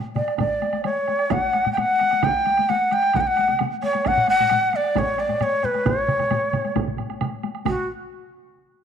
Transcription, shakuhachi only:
0, 0, Header, 1, 2, 480
1, 0, Start_track
1, 0, Tempo, 458015
1, 411, Time_signature, 4, 2, 24, 8
1, 4727, Tempo, 448766
1, 9358, End_track
2, 0, Start_track
2, 0, Title_t, "Shakuhachi"
2, 0, Program_c, 0, 77
2, 169, Note_on_c, 0, 74, 64
2, 394, Note_off_c, 0, 74, 0
2, 399, Note_on_c, 0, 74, 70
2, 855, Note_off_c, 0, 74, 0
2, 888, Note_on_c, 0, 73, 72
2, 1380, Note_on_c, 0, 78, 80
2, 1396, Note_off_c, 0, 73, 0
2, 1800, Note_off_c, 0, 78, 0
2, 1811, Note_on_c, 0, 79, 58
2, 1876, Note_on_c, 0, 78, 92
2, 1891, Note_off_c, 0, 79, 0
2, 2352, Note_on_c, 0, 79, 94
2, 2368, Note_off_c, 0, 78, 0
2, 2821, Note_on_c, 0, 78, 84
2, 2837, Note_off_c, 0, 79, 0
2, 3071, Note_on_c, 0, 79, 91
2, 3087, Note_off_c, 0, 78, 0
2, 3312, Note_on_c, 0, 78, 79
2, 3328, Note_off_c, 0, 79, 0
2, 3357, Note_on_c, 0, 79, 66
2, 3372, Note_off_c, 0, 78, 0
2, 3427, Note_on_c, 0, 78, 82
2, 3443, Note_off_c, 0, 79, 0
2, 3780, Note_off_c, 0, 78, 0
2, 4018, Note_on_c, 0, 73, 85
2, 4267, Note_on_c, 0, 78, 98
2, 4283, Note_off_c, 0, 73, 0
2, 4498, Note_off_c, 0, 78, 0
2, 4503, Note_on_c, 0, 78, 103
2, 4992, Note_on_c, 0, 74, 88
2, 5008, Note_off_c, 0, 78, 0
2, 5233, Note_on_c, 0, 73, 92
2, 5250, Note_off_c, 0, 74, 0
2, 5463, Note_on_c, 0, 74, 83
2, 5479, Note_off_c, 0, 73, 0
2, 5709, Note_on_c, 0, 73, 85
2, 5725, Note_off_c, 0, 74, 0
2, 5942, Note_on_c, 0, 71, 82
2, 5958, Note_off_c, 0, 73, 0
2, 6179, Note_on_c, 0, 73, 87
2, 6195, Note_off_c, 0, 71, 0
2, 7140, Note_off_c, 0, 73, 0
2, 8108, Note_on_c, 0, 66, 73
2, 8325, Note_off_c, 0, 66, 0
2, 9358, End_track
0, 0, End_of_file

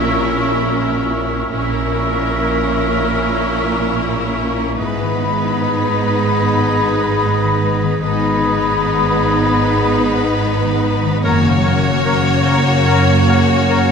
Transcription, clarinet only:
0, 0, Header, 1, 2, 480
1, 0, Start_track
1, 0, Key_signature, 5, "minor"
1, 0, Tempo, 817439
1, 895, Time_signature, 4, 2, 24, 8
1, 3290, Tempo, 807537
1, 8233, End_track
2, 0, Start_track
2, 0, Title_t, "Clarinet"
2, 0, Program_c, 0, 71
2, 0, Note_on_c, 0, 70, 65
2, 871, Note_off_c, 0, 70, 0
2, 894, Note_on_c, 0, 70, 72
2, 2627, Note_off_c, 0, 70, 0
2, 2815, Note_on_c, 0, 68, 74
2, 4708, Note_off_c, 0, 68, 0
2, 4736, Note_on_c, 0, 68, 73
2, 6543, Note_off_c, 0, 68, 0
2, 6644, Note_on_c, 0, 70, 83
2, 6739, Note_off_c, 0, 70, 0
2, 6887, Note_on_c, 0, 70, 67
2, 6983, Note_off_c, 0, 70, 0
2, 7127, Note_on_c, 0, 70, 73
2, 7222, Note_off_c, 0, 70, 0
2, 7363, Note_on_c, 0, 70, 74
2, 7458, Note_off_c, 0, 70, 0
2, 7612, Note_on_c, 0, 70, 82
2, 7707, Note_off_c, 0, 70, 0
2, 7855, Note_on_c, 0, 70, 78
2, 7950, Note_off_c, 0, 70, 0
2, 8100, Note_on_c, 0, 70, 80
2, 8196, Note_off_c, 0, 70, 0
2, 8233, End_track
0, 0, End_of_file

